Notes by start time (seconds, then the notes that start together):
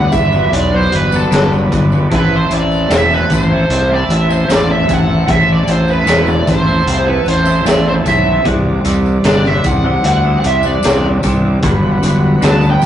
Already playing: A1 E2 G2 D3 F#3 B3 D4 D5 F#5 B5
0.12 G1 E5, muted clean electric guitar stroke, kick, closed hi-hat, tambourine
0.32 F#3 B3 D4, tambourine
0.52 B1 D5, closed hi-hat, tambourine
0.72 F#3 B3 D4 C5
0.92 G1 B4, closed hi-hat, tambourine
1.12 F#3 B3 D4, tambourine
1.16 A4
1.31 G1 G2 D3 F#3 B3 D4, snare, closed hi-hat, tambourine
1.50 F#3 B3 D4, tambourine
1.71 G1 D3 F#3 B3 D4, kick, closed hi-hat, tambourine
1.91 F#3 B3 D4, tambourine
2.10 A1 E2 A2 E3 A3 C4 E4 E5 A5, kick, closed hi-hat
2.15 B4
2.36 C5
2.49 A1 E3 A3 C4 E4, closed hi-hat, tambourine
2.54 D5
2.72 tambourine
2.89 E1 A2 E3 A3 C4 E4, snare, closed hi-hat, tambourine
2.95 E5
3.11 A3 C4 E4 B4, tambourine
3.30 A1, muted clean electric guitar stroke, kick, closed hi-hat, tambourine
3.35 C5
3.51 A3 C4 E4
3.69 C2, closed hi-hat
3.90 A3 C4 E4
3.94 D5
4.09 A1 E5, closed hi-hat, tambourine
4.28 A3 C4 E4 C5, tambourine
4.48 A1 A2 E3 A3 C4 E4, snare, closed hi-hat, tambourine
4.53 D5
4.68 A3 C4 E4 E5
4.86 A1 E3 A3 C4 E4, kick, closed hi-hat, tambourine
4.93 F#5
5.07 A3 C4 E4
5.26 A1 A2 E3 A3 C4 E4 E5, kick, closed hi-hat
5.52 D5
5.65 A1 E3 A3 C4 E4, closed hi-hat, tambourine
5.71 C5
5.88 B4, tambourine
6.06 E1 A2 E3 A3 C4 E4, snare, closed hi-hat, tambourine
6.26 A3 C4 E4 D5, tambourine
6.46 A1 C5, muted clean electric guitar stroke, kick, closed hi-hat, tambourine
6.66 A3 C4 E4
6.86 C2, closed hi-hat
7.05 A3 C4 E4 B4
7.26 A1 C5, closed hi-hat, tambourine
7.46 A3 C4 E4, tambourine
7.65 A1 A2 E3 A3 C4 E4 D5, snare, closed hi-hat, tambourine
7.85 A3 C4 E4 C5
8.04 B1 E3 A3 C4 E4 E5, kick, closed hi-hat, tambourine
8.24 A3 C4 E4
8.44 C2 C3 G3 C4 D4 D5, kick, closed hi-hat
8.84 C2 C3 G3 C4 D4, closed hi-hat, tambourine
9.05 tambourine
9.24 G1 C3 G3 C4 D4 D5, snare, closed hi-hat, tambourine
9.44 G3 C4 D4 E5, snare, tambourine
9.64 C2 F#5, muted clean electric guitar stroke, kick, closed hi-hat, tambourine
9.84 G3 C4 D4
10.03 D2 F#5, closed hi-hat
10.24 G3 C4 D4
10.40 C2 F#5, tambourine
10.44 E5, closed hi-hat
10.63 G3 C4 D4 D5, tambourine
10.83 C2 C3 G3 C4 D4, snare, closed hi-hat, tambourine
11.02 G3 C4 D4
11.23 C2 C3 G3 C4 D4, kick, closed hi-hat, tambourine
11.44 G3 C4 D4
11.63 G1 G2 D3 F#3 B3 D4 F#5 B5, kick, closed hi-hat, tambourine
12.01 G1 D3 F#3 B3 D4, closed hi-hat, tambourine
12.41 D2 G2 D3 F#3 B3 D4 A5, snare, closed hi-hat, tambourine
12.62 F#3 B3 D4, tambourine
12.70 G5
12.82 muted clean electric guitar stroke, kick, tambourine